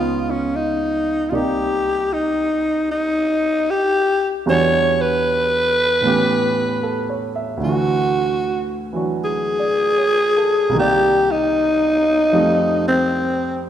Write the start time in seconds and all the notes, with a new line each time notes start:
Already playing: C#2 C#3 B3 D#4 F4
0.30 C#4
0.56 D#4
1.30 C2 C3 A#3 D#4 F4 D5
1.35 G4
2.13 D#4
2.91 D#4
3.70 G4
4.46 E2 E3 G3 D4 F#4 C#5
5.01 B4
6.01 A2 E3 B3
6.06 C#4 G4
6.83 A4
7.09 C#5
7.36 E5
7.57 D2 D3
7.63 E3 A3 F#4
7.68 F#4
8.93 E3 F#3 D4 F#4
9.24 G#4
9.59 D5
9.98 C#5
10.37 A4
10.69 C2 C3
10.75 D#3 A#3
10.79 G4 D5
11.31 D#4
12.32 F2 F3 G3 A3 D#4
12.88 C4